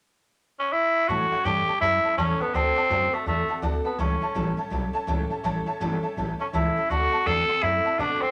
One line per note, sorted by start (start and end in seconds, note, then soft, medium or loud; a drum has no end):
0.59 0.74 C#4 medium
0.72 1.10 E4 loud
1.08 1.31 A2 medium
1.08 1.31 E3 medium
1.08 1.31 G3 medium
1.08 1.32 C#4 medium
1.08 1.46 F#4 loud
1.08 1.31 G4 medium
1.08 1.30 A4 medium
1.08 1.22 C#5 loud
1.08 1.23 E5 medium
1.08 1.23 A5 medium
1.31 1.44 G3 soft
1.31 1.45 C#4 soft
1.31 1.45 G4 medium
1.31 1.45 A4 medium
1.31 1.40 C#5 medium
1.31 1.40 E5 medium
1.31 1.40 F#5 loud
1.31 muted upright bass stroke medium
1.45 1.67 G2 loud
1.45 1.67 A2 medium
1.45 1.68 E3 medium
1.45 1.68 G3 medium
1.45 1.68 C#4 medium
1.45 1.80 G4 loud
1.45 1.67 G4 medium
1.45 1.66 A4 medium
1.45 1.58 C#5 medium
1.45 1.59 E5 medium
1.45 1.59 A5 medium
1.67 1.80 G3 soft
1.67 1.81 C#4 soft
1.67 1.82 G4 soft
1.67 1.81 A4 medium
1.67 1.76 C#5 medium
1.67 1.76 E5 medium
1.67 1.76 A5 medium
1.67 muted upright bass stroke medium
1.81 2.03 F#2 medium
1.81 2.04 G3 medium
1.81 2.04 C#4 medium
1.81 2.15 E4 loud
1.81 2.03 G4 medium
1.81 2.02 A4 medium
1.81 1.95 C#5 medium
1.81 1.95 A5 medium
2.03 2.17 G3 medium
2.03 2.18 C#4 soft
2.03 2.18 G4 medium
2.03 2.17 A4 medium
2.03 2.12 C#5 medium
2.03 2.12 E5 medium
2.03 2.12 A5 medium
2.03 muted upright bass stroke medium
2.17 2.39 E2 medium
2.17 2.40 A2 medium
2.17 2.40 E3 medium
2.17 2.41 G3 medium
2.17 2.42 C#4 loud
2.17 2.40 C#4 medium
2.17 2.40 G4 medium
2.17 2.39 A4 loud
2.17 2.31 C#5 loud
2.17 2.31 E5 medium
2.17 2.31 A5 loud
2.40 2.54 G3 soft
2.40 2.56 B3 medium
2.40 2.55 C#4 soft
2.40 2.54 G4 medium
2.40 2.54 A4 medium
2.40 2.48 C#5 medium
2.40 2.49 E5 medium
2.40 2.49 A5 medium
2.40 muted upright bass stroke medium
2.54 2.75 D2 medium
2.54 2.76 D3 medium
2.54 2.77 A3 medium
2.54 3.15 C4 loud
2.54 2.77 C4 medium
2.54 2.76 F#4 medium
2.54 2.75 A4 loud
2.54 2.68 D5 medium
2.54 2.68 F#5 medium
2.54 2.68 A5 loud
2.76 2.90 C4 soft
2.76 2.90 F#4 soft
2.76 2.90 A4 medium
2.76 2.84 D5 loud
2.76 2.85 F#5 medium
2.76 2.85 A5 loud
2.76 muted upright bass stroke medium
2.90 3.12 F#2 loud
2.90 3.12 D3 medium
2.90 3.13 A3 medium
2.90 3.13 C4 medium
2.90 3.12 F#4 medium
2.90 3.11 A4 medium
2.90 3.03 D5 medium
2.90 3.04 F#5 medium
2.90 3.04 A5 medium
3.12 3.27 A3 medium
3.12 3.26 C4 soft
3.12 3.27 F#4 medium
3.12 3.26 A4 medium
3.12 3.21 D5 medium
3.12 3.21 F#5 medium
3.12 3.22 A5 medium
3.12 muted upright bass stroke medium
3.26 3.48 E2 medium
3.26 3.49 A3 medium
3.26 3.61 A3 medium
3.26 3.49 C4 medium
3.26 3.49 F#4 medium
3.26 3.47 A4 medium
3.26 3.40 D5 medium
3.26 3.40 F#5 medium
3.26 3.40 A5 medium
3.48 3.62 C4 soft
3.48 3.62 F#4 medium
3.48 3.63 A4 medium
3.48 3.57 D5 medium
3.48 3.57 F#5 medium
3.48 3.58 A5 medium
3.48 muted upright bass stroke medium
3.62 3.84 D2 medium
3.62 3.85 D3 medium
3.62 3.85 A3 medium
3.62 3.85 C4 medium
3.62 3.84 F#4 medium
3.62 3.83 A4 loud
3.62 3.76 D5 medium
3.62 3.76 F#5 medium
3.62 3.77 A5 loud
3.84 4.01 B3 medium
3.84 3.99 C4 soft
3.84 3.99 F#4 medium
3.84 3.99 A4 soft
3.84 3.93 D5 medium
3.84 3.93 F#5 medium
3.84 3.94 A5 medium
3.84 muted upright bass stroke medium
3.98 4.20 C#2 medium
3.98 4.21 A2 medium
3.98 4.21 E3 medium
3.98 4.22 G3 medium
3.98 4.22 C#4 medium
3.98 4.58 C#4 medium
3.98 4.21 G4 loud
3.98 4.20 A4 medium
3.98 4.12 C#5 loud
3.98 4.13 E5 medium
3.98 4.13 A5 loud
4.21 4.34 G3 soft
4.21 4.35 C#4 medium
4.21 4.35 G4 medium
4.21 4.35 A4 medium
4.21 4.30 C#5 loud
4.21 4.30 E5 medium
4.21 4.31 A5 loud
4.21 muted upright bass stroke medium
4.34 4.57 A1 loud
4.34 4.57 A2 medium
4.34 4.58 E3 medium
4.34 4.58 G3 medium
4.34 4.57 C#4 medium
4.34 4.57 G4 medium
4.34 4.56 A4 medium
4.34 4.48 C#5 medium
4.34 4.49 E5 medium
4.34 4.49 A5 medium
4.57 4.69 G3 soft
4.57 4.70 C#4 medium
4.57 4.71 G4 medium
4.57 4.71 A4 medium
4.57 4.66 C#5 medium
4.57 4.66 E5 medium
4.57 4.67 A5 loud
4.57 muted upright bass stroke medium
4.70 4.93 B1 loud
4.70 4.93 G3 medium
4.70 4.94 C#4 medium
4.70 4.93 G4 medium
4.70 4.92 A4 medium
4.70 4.85 C#5 medium
4.70 4.85 E5 medium
4.70 4.86 A5 medium
4.93 5.07 G3 medium
4.93 5.07 C#4 medium
4.93 5.07 G4 medium
4.93 5.08 A4 medium
4.93 5.02 C#5 medium
4.93 5.02 E5 medium
4.93 5.03 A5 loud
4.93 muted upright bass stroke medium
5.07 5.29 C#2 medium
5.07 5.30 A2 medium
5.07 5.30 E3 loud
5.07 5.30 G3 loud
5.07 5.31 C#4 medium
5.07 5.30 G4 loud
5.07 5.29 A4 loud
5.07 5.21 C#5 loud
5.07 5.21 E5 loud
5.07 5.22 A5 loud
5.30 5.43 G3 soft
5.30 5.43 C#4 medium
5.30 5.44 G4 medium
5.30 5.44 A4 soft
5.30 5.38 C#5 medium
5.30 5.39 E5 medium
5.30 5.39 A5 medium
5.30 muted upright bass stroke medium
5.44 5.66 A1 medium
5.44 5.67 A2 medium
5.44 5.67 E3 medium
5.44 5.67 G3 loud
5.44 5.66 C#4 loud
5.44 5.66 G4 medium
5.44 5.65 A4 medium
5.44 5.57 C#5 loud
5.44 5.58 E5 loud
5.44 5.58 A5 loud
5.66 5.80 G3 medium
5.66 5.80 C#4 medium
5.66 5.80 G4 medium
5.66 5.80 A4 medium
5.66 5.75 C#5 loud
5.66 5.75 E5 loud
5.66 5.76 A5 loud
5.66 muted upright bass stroke medium
5.80 6.02 G1 loud
5.80 6.03 A2 medium
5.80 6.03 E3 medium
5.80 6.03 G3 loud
5.80 6.03 C#4 loud
5.80 6.03 G4 loud
5.80 6.02 A4 loud
5.80 5.94 C#5 medium
5.80 5.94 E5 medium
5.80 5.95 A5 medium
6.03 6.16 G3 medium
6.03 6.17 C#4 soft
6.03 6.17 G4 medium
6.03 6.17 A4 medium
6.03 6.11 C#5 medium
6.03 6.12 E5 medium
6.03 6.12 A5 loud
6.03 muted upright bass stroke medium
6.17 6.38 A1 medium
6.17 6.40 G3 medium
6.17 6.40 C#4 medium
6.17 6.39 G4 medium
6.17 6.38 A4 medium
6.17 6.30 C#5 medium
6.17 6.31 E5 medium
6.17 6.31 A5 medium
6.39 6.53 G3 soft
6.39 6.47 C#4 medium
6.39 6.53 C#4 medium
6.39 6.53 G4 medium
6.39 6.54 A4 medium
6.39 6.48 C#5 medium
6.39 6.48 E5 medium
6.39 6.48 A5 medium
6.39 muted upright bass stroke medium
6.53 6.75 C#2 medium
6.53 6.76 A2 medium
6.53 6.76 E3 medium
6.53 6.76 G3 medium
6.53 6.76 C#4 medium
6.53 6.92 E4 medium
6.53 6.76 G4 medium
6.53 6.75 A4 medium
6.53 6.67 C#5 loud
6.53 6.67 E5 medium
6.53 6.67 A5 loud
6.75 6.90 G3 soft
6.75 6.91 C#4 soft
6.75 6.90 G4 medium
6.75 6.90 A4 soft
6.75 6.84 C#5 medium
6.75 6.85 E5 medium
6.75 6.85 A5 medium
6.75 muted upright bass stroke medium
6.90 7.12 D2 medium
6.90 7.12 D3 medium
6.90 7.13 A3 medium
6.90 7.13 C4 medium
6.90 7.28 F#4 loud
6.90 7.12 F#4 medium
6.90 7.11 A4 medium
6.90 7.03 D5 medium
6.90 7.04 F#5 medium
6.90 7.04 A5 loud
7.12 7.26 C4 soft
7.12 7.26 F#4 medium
7.12 7.26 A4 medium
7.12 7.21 D5 medium
7.12 7.21 F#5 medium
7.12 7.21 A5 loud
7.12 muted upright bass stroke medium
7.26 7.48 E2 loud
7.26 7.49 D3 medium
7.26 7.49 A3 medium
7.26 7.49 C4 medium
7.26 7.49 F#4 medium
7.26 7.64 A4 loud
7.26 7.48 A4 medium
7.26 7.40 D5 medium
7.26 7.40 F#5 medium
7.26 7.40 A5 medium
7.48 7.62 C4 soft
7.48 7.63 F#4 medium
7.48 7.63 A4 medium
7.48 7.57 D5 medium
7.48 7.57 F#5 medium
7.48 7.57 C6 medium
7.48 muted upright bass stroke medium
7.62 7.84 F#2 medium
7.62 7.85 A3 medium
7.62 7.86 C4 medium
7.62 8.01 E4 loud
7.62 7.84 A4 medium
7.62 7.76 D5 medium
7.62 7.76 F#5 medium
7.62 7.76 B5 medium
7.84 7.99 C4 soft
7.84 7.99 F#4 soft
7.84 7.99 A4 medium
7.84 7.93 D5 medium
7.84 7.93 F#5 medium
7.84 7.94 A5 medium
7.84 muted upright bass stroke medium
7.98 8.21 B2 medium
7.98 8.22 D3 medium
7.98 8.22 A3 medium
7.98 8.22 C4 medium
7.98 8.23 D4 loud
7.98 8.21 F#4 medium
7.98 8.20 A4 medium
7.98 8.12 D5 medium
7.98 8.12 F#5 medium
7.98 8.13 A5 loud
8.21 8.31 C4 medium
8.21 8.31 C4 soft
8.21 8.31 F#4 soft
8.21 8.31 A4 soft
8.21 8.30 D5 medium
8.21 8.30 F#5 medium
8.21 8.30 B5 medium
8.21 muted upright bass stroke medium